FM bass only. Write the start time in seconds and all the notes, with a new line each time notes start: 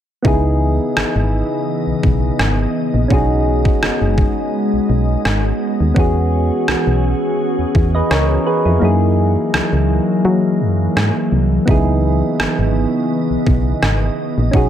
0.25 C#2
0.97 G#1
1.16 G#1
1.87 B1
2.04 B1
2.39 G#1
2.94 A#1
3.11 B1
3.82 F#1
4.01 F#1
4.73 B1
4.89 B1
5.25 G#1
5.80 D#2
5.96 E2
6.68 B1
6.87 B1
7.59 E2
7.75 E2
8.11 C#2
8.66 F2
8.82 F#2
9.53 C#2
9.73 C#2
10.25 F#3
10.61 F#2
10.96 G#2
11.32 C2
11.68 C#2
12.39 G#1
12.59 G#1
13.30 B1
13.47 B1
13.83 G#1
14.38 A#1
14.54 B1